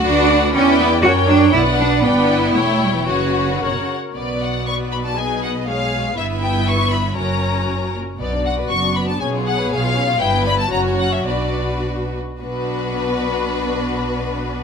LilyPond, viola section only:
\new Staff \with { instrumentName = "Viola section" } { \time 2/4 \key b \minor \tempo 4 = 118 << { d''4 d''4 | cis''4 d''4 | d''4 cis''4 | cis''4 cis''8 r8 |
fis'2 | gis'4 gis'4 | e'2 | fis'4. r8 |
fis'2 | gis'2 | e'4 fis'4 | fis'4. r8 |
d'2~ | d'2 | } \\ { b'4 b'4 | ais'4 b'4 | b'4 cis''4 | b'4 ais'8 r8 |
b2 | b4 gis4 | b2 | cis'4. r8 |
b2~ | b2 | b4 cis'4 | d'4. r8 |
b2~ | b2 | } >> }